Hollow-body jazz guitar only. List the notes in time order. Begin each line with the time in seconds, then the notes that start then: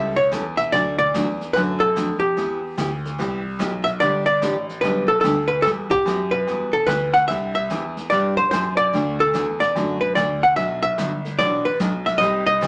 Already playing: E5
0.16 C#5
0.57 E5
0.72 D5
0.98 D5
1.53 B4
1.80 A4
2.20 G4
3.84 E5
4.00 D5
4.26 D5
4.81 B4
5.08 A4
5.21 A4
5.48 B4
5.62 A4
5.91 G4
6.31 B4
6.73 A4
6.87 B4
7.14 F#5
7.28 E5
7.55 E5
8.10 D5
8.37 C5
8.51 C5
8.77 D5
9.20 A4
9.60 D5
10.01 B4
10.15 D5
10.43 F#5
10.56 E5
10.83 E5
11.39 D5
11.65 B4
12.06 E5
12.18 D#5
12.47 D#5